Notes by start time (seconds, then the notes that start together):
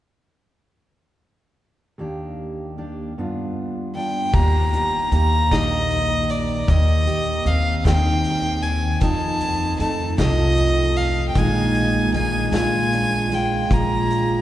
1.98 D#2 A#3 D4 G4
2.78 A#3 D4 G4
3.18 G2 B3 D4 F4
3.95 B3 D4 F4 G5
4.33 D#2 G4 A#5, kick, crash
4.73 G4, closed hi-hat
5.11 D#2 A#3 G4 A#5, closed hi-hat
5.51 A#1 D#3 D#5, kick, snare, closed hi-hat
5.91 closed hi-hat
6.29 D5, closed hi-hat
6.67 D#2 G4 D#5, kick, closed hi-hat
7.07 G4, closed hi-hat
7.45 D#2 C4 F5, closed hi-hat
7.79 F5
7.85 D#2 D#3 G5, kick, snare, closed hi-hat
8.24 closed hi-hat
8.62 G#5, closed hi-hat
9.01 F2 D#4 A5, kick, closed hi-hat
9.41 C4, closed hi-hat
9.80 F2 A3 C4 D#4 A5, closed hi-hat
10.18 C2 F3 D#5, kick, snare, closed hi-hat
10.57 closed hi-hat
10.96 F5, closed hi-hat
11.28 G5
11.35 A#1 A#2 D#3 G#3 A#3 G#5, kick, closed hi-hat
11.39 D#4
11.75 A#3, closed hi-hat
12.13 A#1 G#3 A#3 D#4 G#5, closed hi-hat
12.52 A#1 A#2 F4 G#5, snare, closed hi-hat
12.92 D4, closed hi-hat
13.31 G#3 D4 F4 G5, closed hi-hat
13.70 A#1 F3 A#5, kick, closed hi-hat
14.10 closed hi-hat